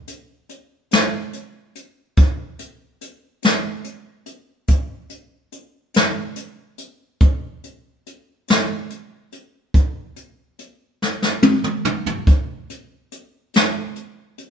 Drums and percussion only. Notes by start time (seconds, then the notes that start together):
0.08 closed hi-hat
0.49 closed hi-hat
0.91 snare, closed hi-hat
1.33 closed hi-hat
1.75 closed hi-hat
2.17 kick, closed hi-hat
2.59 closed hi-hat
3.01 closed hi-hat
3.43 snare, closed hi-hat
3.84 closed hi-hat
4.26 closed hi-hat
4.68 kick, closed hi-hat
5.10 closed hi-hat
5.52 closed hi-hat
5.94 snare, closed hi-hat
6.36 closed hi-hat
6.78 closed hi-hat
7.21 kick, closed hi-hat
7.64 closed hi-hat
8.06 closed hi-hat
8.48 snare, closed hi-hat
8.90 closed hi-hat
9.32 closed hi-hat
9.74 kick, closed hi-hat
10.16 closed hi-hat
10.59 closed hi-hat
11.02 snare
11.22 snare
11.43 high tom
11.64 mid tom
11.85 mid tom
12.06 floor tom
12.27 kick, closed hi-hat
12.70 closed hi-hat
13.12 closed hi-hat
13.54 snare, closed hi-hat
13.96 closed hi-hat
14.38 closed hi-hat